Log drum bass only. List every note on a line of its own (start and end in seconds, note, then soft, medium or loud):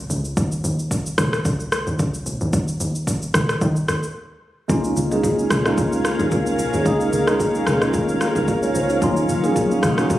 0.10 0.34 C#2 medium
0.37 0.61 D#2 loud
0.64 1.12 D#2 loud
1.18 1.42 D#2 loud
1.45 1.83 C#2 loud
1.87 1.98 D#2 medium
1.99 2.24 C#2 medium
2.26 2.40 A#1 medium
2.41 2.52 D#2 medium
2.53 2.77 D#2 loud
2.80 3.29 D#2 medium
3.34 3.59 D#2 loud
3.61 3.75 D#3 loud
3.89 4.02 D#2 loud
4.70 4.94 C#2 loud
4.97 5.45 C#2 loud
5.51 5.75 C#2 medium
5.78 6.15 C#2 loud
6.20 6.30 D#2 medium
6.32 6.56 C#2 medium
6.59 6.72 A#1 medium
6.73 6.84 D#2 medium
6.86 7.10 C#2 loud
7.13 7.61 C#2 loud
7.67 7.91 C#2 loud
7.94 8.31 D#2 loud
8.36 8.71 C#2 medium
8.75 8.99 C#2 medium
9.02 9.26 D#2 loud
9.29 9.77 D#2 medium
9.83 10.07 D#2 loud
10.10 10.19 C#2 medium